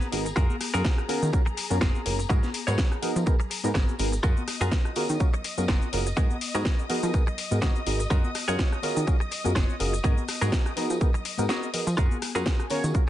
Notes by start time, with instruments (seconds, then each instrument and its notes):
Already playing: string section G#4 A#5
0.02 shaker
0.12 analog synth bass G#1, reed electric piano B3 D#4 F#4 G#4 A#4, open hi-hat, tambourine
0.25 muted clean electric guitar stroke, tambourine, shaker
0.36 analog synth bass F#2, reed electric piano C#4 F4 F#4 G#4 A#4, clean electric guitar F4 F#4 G#4 A#4, kick, tambourine, shaker
0.50 high conga, shaker
0.60 cross-stick, open hi-hat, tambourine
0.74 analog synth bass F#2, reed electric piano C#4 F4 F#4 G#4 A#4, clean electric guitar F4 F#4 G#4 A#4, tambourine, low conga, shaker
0.85 kick, snare, tambourine, shaker
0.98 cross-stick, shaker
1.08 analog synth bass D#3, reed electric piano C#4 F4 F#4 G#4 A#4, open hi-hat, tambourine, high conga
1.22 analog synth bass D#3, tambourine, shaker
1.33 reed electric piano C#4 F4 F#4 G#4 A#4, muted clean electric guitar stroke, kick, tambourine, shaker
1.46 muted clean electric guitar stroke, low conga, shaker
1.57 muted clean electric guitar stroke, open hi-hat, tambourine
1.70 analog synth bass F#2, reed electric piano C#4 F4 F#4 G#4 A#4, tambourine, high conga, shaker
1.81 analog synth bass F#1, clean electric guitar F4 F#4 G#4 A#4, kick, snare, shaker
1.95 shaker
2.05 analog synth bass F#1, reed electric piano C#4 F4 F#4 G#4 A#4, open hi-hat, tambourine
2.19 muted clean electric guitar stroke, tambourine, shaker
2.29 analog synth bass G#2, clean electric guitar B3 F#4 G#4 A#4, reed electric piano B3 D#4 F#4 G#4 A#4, kick, shaker
2.43 snare, high conga, shaker
2.54 open hi-hat, tambourine
2.67 analog synth bass G#2, reed electric piano B3 D#4 F#4 G#4 A#4, clean electric guitar B3 F#4 G#4 C#5, tambourine, low conga, shaker
2.78 kick, snare, tambourine, shaker
2.92 cross-stick, shaker
3.02 analog synth bass F3, reed electric piano B3 D#4 F#4 G#4 A#4, open hi-hat, tambourine, high conga
3.16 analog synth bass F3, tambourine, shaker
3.26 reed electric piano B3 D#4 F#4 G#4 A#4, muted clean electric guitar stroke, kick, tambourine, shaker
3.40 muted clean electric guitar stroke, low conga, shaker
3.50 muted clean electric guitar stroke, open hi-hat, tambourine
3.64 analog synth bass G#2, reed electric piano B3 D#4 F#4 G#4 A#4, tambourine, high conga, shaker
3.74 analog synth bass G#1, clean electric guitar B3 F#4 G#4 A#4, kick, snare, tambourine, shaker
3.89 shaker
3.99 analog synth bass G#1, reed electric piano B3 D#4 F#4 G#4 A#4, open hi-hat, tambourine
4.12 muted clean electric guitar stroke, tambourine, shaker
4.23 analog synth bass F#2, reed electric piano C#4 F4 F#4 G#4 A#4, clean electric guitar F4 F#4 G#4 A#4, string section D#5 D#6, kick, tambourine, shaker
4.37 high conga, shaker
4.48 cross-stick, open hi-hat, tambourine
4.61 analog synth bass F#2, reed electric piano C#4 F4 F#4 G#4 A#4, clean electric guitar F4 F#4 G#4 A#4, tambourine, low conga, shaker
4.72 kick, snare, tambourine, shaker
4.85 cross-stick, shaker
4.96 analog synth bass D#3, reed electric piano C#4 F4 F#4 G#4 A#4, open hi-hat, tambourine, high conga
5.09 analog synth bass D#3, tambourine, shaker
5.20 reed electric piano C#4 F4 F#4 G#4 A#4, muted clean electric guitar stroke, kick, tambourine, shaker
5.34 muted clean electric guitar stroke, low conga, shaker
5.44 muted clean electric guitar stroke, open hi-hat, tambourine
5.58 analog synth bass F#2, reed electric piano C#4 F4 F#4 G#4 A#4, tambourine, high conga, shaker
5.68 analog synth bass F#1, clean electric guitar F4 F#4 G#4 A#4, kick, snare, tambourine, shaker
5.82 shaker
5.93 analog synth bass F#1, reed electric piano C#4 F4 F#4 G#4 A#4, open hi-hat, tambourine
6.06 muted clean electric guitar stroke, tambourine, shaker
6.17 analog synth bass G#2, clean electric guitar B3 F#4 G#4 A#4, reed electric piano B3 D#4 F#4 G#4 A#4, kick, shaker
6.30 high conga, shaker
6.41 open hi-hat, tambourine
6.54 analog synth bass G#2, reed electric piano B3 D#4 F#4 G#4 A#4, clean electric guitar B3 F#4 G#4 A#4, tambourine, low conga, shaker
6.65 kick, snare, tambourine, shaker
6.79 shaker
6.89 analog synth bass F3, reed electric piano B3 D#4 F#4 G#4 A#4, open hi-hat, tambourine, high conga
7.02 analog synth bass F3, tambourine, shaker
7.14 reed electric piano B3 D#4 F#4 G#4 A#4, muted clean electric guitar stroke, kick, tambourine, shaker
7.27 muted clean electric guitar stroke, low conga, shaker
7.38 muted clean electric guitar stroke, open hi-hat, tambourine
7.51 analog synth bass G#2, reed electric piano B3 D#4 F#4 G#4 A#4, tambourine, high conga, shaker
7.62 analog synth bass G#1, clean electric guitar B3 F#4 G#4 A#4, kick, snare, tambourine, shaker
7.76 shaker
7.86 analog synth bass G#1, reed electric piano B3 D#4 F#4 G#4 A#4, open hi-hat, tambourine
7.99 muted clean electric guitar stroke, tambourine, shaker
8.10 analog synth bass F#2, reed electric piano C#4 F4 F#4 G#4 A#4, clean electric guitar F4 F#4 G#4 A#4, kick, tambourine, shaker
8.24 high conga, shaker
8.35 cross-stick, open hi-hat, tambourine
8.48 analog synth bass F#2, reed electric piano C#4 F4 F#4 G#4 A#4, clean electric guitar F4 F#4 G#4 C#5, tambourine, low conga, shaker
8.59 kick, snare, tambourine, shaker
8.73 cross-stick, shaker
8.82 analog synth bass D#3, reed electric piano C#4 F4 F#4 G#4 A#4, open hi-hat, tambourine, high conga
8.96 analog synth bass D#3, tambourine, shaker
9.07 reed electric piano C#4 F4 F#4 G#4 A#4, muted clean electric guitar stroke, kick, tambourine, shaker
9.20 muted clean electric guitar stroke, low conga, shaker
9.31 muted clean electric guitar stroke, open hi-hat, tambourine
9.44 analog synth bass F#2, reed electric piano C#4 F4 F#4 G#4 A#4, tambourine, high conga, shaker
9.55 analog synth bass F#1, clean electric guitar F4 F#4 G#4 C#5, kick, snare, tambourine, shaker
9.69 shaker
9.80 analog synth bass F#1, reed electric piano C#4 F4 F#4 G#4 A#4, open hi-hat, tambourine
9.93 muted clean electric guitar stroke, tambourine, shaker
10.04 analog synth bass G#2, clean electric guitar B3 F#4 G#4 A#4, reed electric piano B3 D#4 F#4 G#4 A#4, kick, tambourine, shaker
10.17 high conga, shaker
10.28 cross-stick, open hi-hat, tambourine
10.41 analog synth bass G#2, reed electric piano B3 D#4 F#4 G#4 A#4, clean electric guitar B3 F#4 G#4 A#4, tambourine, low conga, shaker
10.52 kick, snare, shaker
10.66 cross-stick, shaker
10.76 analog synth bass F3, reed electric piano B3 D#4 F#4 G#4 A#4, open hi-hat, tambourine, high conga
10.90 analog synth bass F3, tambourine, shaker
11.01 reed electric piano B3 D#4 F#4 G#4 A#4, muted clean electric guitar stroke, kick, shaker
11.14 muted clean electric guitar stroke, low conga, shaker
11.25 muted clean electric guitar stroke, open hi-hat, tambourine
11.38 analog synth bass G#2, reed electric piano B3 D#4 F#4 G#4 A#4, tambourine, high conga, shaker
11.49 clean electric guitar B3 F#4 G#4 A#4, snare, shaker
11.63 shaker
11.73 analog synth bass F3, reed electric piano B3 D#4 F#4 G#4 A#4, open hi-hat, tambourine
11.87 analog synth bass F3, muted clean electric guitar stroke, tambourine, shaker
11.97 analog synth bass F#2, reed electric piano C#4 F4 F#4 G#4 A#4, clean electric guitar F4 F#4 G#4 A#4, string section G#4 G#5, kick, shaker
12.11 high conga, shaker
12.22 cross-stick, open hi-hat, tambourine
12.35 analog synth bass F#2, reed electric piano C#4 F4 F#4 G#4 A#4, clean electric guitar F4 F#4 G#4 A#4, tambourine, low conga, shaker
12.46 kick, snare, shaker
12.60 cross-stick, shaker
12.70 analog synth bass D#3, reed electric piano C#4 F4 F#4 G#4 A#4, analog polysynth C#5, open hi-hat, tambourine, high conga
12.84 analog synth bass D#3, tambourine, shaker
12.94 reed electric piano C#4 F4 F#4 G#4 A#4, muted clean electric guitar stroke, kick, shaker